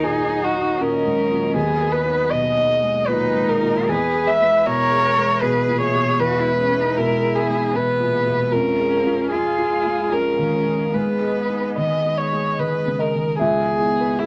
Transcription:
Already playing: felt piano D#2 D#4 A#4, analog synth pad F#3 F#4 D#5, cello D#4
0.02 felt piano A#2, violin G#4
0.27 felt piano D#4
0.44 violin F#4
0.54 felt piano F#3
0.78 felt piano A#2, cello C#4, violin A#4
1.05 felt piano G#2
1.31 felt piano A#2
1.54 felt piano D#2, cello B3, analog synth pad G#4, violin G#4
1.81 felt piano A#4
1.92 violin B4
2.05 felt piano D#4
2.31 felt piano B2, violin D#5
2.56 felt piano D#4
2.83 felt piano G#3
3.07 felt piano A#2, cello D#4, violin B4
3.34 felt piano G#2
3.49 violin A#4
3.62 felt piano A#2
3.88 felt piano E2, analog synth pad G#3 G#4 E5, violin G#4, cello B4
4.14 felt piano G#4
4.27 violin E5
4.40 felt piano G#3
4.65 felt piano B2, cello A#4, violin C#5
4.91 felt piano G#4
5.17 felt piano G#3
5.41 felt piano B2, cello G#4, violin B4
5.67 felt piano A#2
5.80 violin C#5
5.93 felt piano B2
6.19 felt piano E2, cello F#4, violin B4
6.40 cello E4
6.44 felt piano G#4
6.59 cello C#4
6.71 felt piano G#3
6.80 cello D#4
6.97 felt piano B2, cello E4, violin A#4
7.23 felt piano G#4
7.36 violin G#4
7.49 felt piano G#3
7.73 felt piano B2, cello B3, violin B4
8.00 felt piano A#2
8.25 felt piano B2
8.51 felt piano F2, analog synth pad G#3 G#4 F5, cello C#4, violin A#4
8.79 felt piano G#4
9.06 felt piano F4
9.30 felt piano F3, cello F4, violin G#4
9.59 felt piano F4
9.85 felt piano G#3
10.10 felt piano F3, cello C#4, violin A#4
10.38 felt piano D#3
10.66 felt piano F3
10.93 felt piano G#2, cello B3, violin B4, analog synth pad D#5
11.21 felt piano G#4
11.49 felt piano D#4
11.77 felt piano D#3, violin D#5
12.05 felt piano D#4
12.18 violin C#5
12.33 felt piano G#3
12.59 felt piano D#3, violin B4
12.86 felt piano C#3
12.99 violin A#4, felt piano D#5
13.15 felt piano D#3
13.39 felt piano C#2 E5, cello C#3, analog synth pad G#3 B3 G#4, violin G#4
13.61 cello E3, felt piano G#4
13.80 cello G#3, felt piano E4
14.00 cello B3, felt piano B4
14.19 cello G#3, violin E4, felt piano G#4

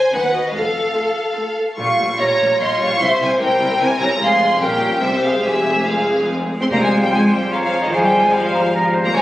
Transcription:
Already playing: flute section C5, violin section C5 G#5
0.13 double bass section D#2, cello section D#2, viola section B3 D#4, flute section B4, violin section B4 F#5
0.33 flute section F#4, violin section D#5
0.53 double bass section F1, cello section F2, violin section A4 F5, flute section A4
0.96 viola section A3 F4
1.36 viola section A3 F4
1.77 double bass section A#1, cello section A#2, viola section G3 F4, flute section F5, violin section C#6
1.98 double bass section A#1, cello section A#2, viola section G3 F4
2.19 double bass section A#1, cello section A#2, viola section G3 F4, flute section C#5, violin section C#5 A#5
2.39 double bass section A#1, cello section A#2, viola section G3 F4
2.59 double bass section A#1, cello section A#2, viola section G3 F4, flute section D#5, violin section C6
2.79 double bass section A#1, cello section A#2, viola section G3 F4, flute section F5, violin section C#6
3.00 double bass section C2, cello section C3, viola section G3 E4, violin section C5 C6, flute section E5
3.19 double bass section C2, cello section C3, viola section G3 E4, flute section C5, violin section G#5
3.39 double bass section C2, cello section C3, viola section G3 E4, violin section A#4 G5, flute section C5
3.59 double bass section C2, cello section C3, viola section G3 E4
3.80 double bass section C2, cello section C3, viola section G3 E4, flute section C5, violin section G#5
4.00 double bass section C2, cello section C3, viola section G3 E4, flute section C#5, violin section A#5
4.19 double bass section F1, cello section F2, viola section G#3 F4, violin section G#4 C6, flute section F5
4.60 double bass section A#1, cello section A#2, viola section G3 C#4, violin section G4 G5, flute section A#4
5.01 double bass section C2, cello section C3, viola section G3 C4, flute section G4, violin section C5 E5
5.22 flute section G#4, violin section F5
5.43 double bass section F1, cello section F2, viola section G#3 C4, flute section G4, violin section G#4 E5
5.86 viola section G#3 C4, flute section G#4, violin section F5
6.61 cello section C4, violin section C6
6.70 timpani F2, double bass section F2, bassoon G3, cello section A#3, french horn section F4 C5, viola section F4 G#4, violin section C5 A#5, oboe C5, flute section F5
6.81 cello section G#3, violin section G#5
7.02 cello section G3, violin section G5
7.11 bassoon F3, cello section G#3, oboe C5, violin section G#5, flute section C6
7.32 cello section G3, violin section G5
7.52 cello section F3, oboe C#5, violin section F5, flute section A#5
7.63 cello section F3, violin section F5
7.83 cello section D#3, violin section D#5
7.92 double bass section G#1, cello section F3, bassoon G#3, oboe C5, violin section F5, flute section G#5
8.03 cello section G3, violin section G5
8.24 cello section G#3, violin section G#5
8.33 cello section F3, bassoon G3, oboe C5, violin section F5, flute section C6
8.55 flute section A#5
8.74 oboe A#4, flute section A#5
8.95 oboe C5
9.04 cello section A#3, violin section A#5
9.13 double bass section C#2, bassoon F3, cello section G#3, viola section F4 G#4, french horn section F4 C#5, oboe C#5, violin section C#5 G#5, flute section G#5

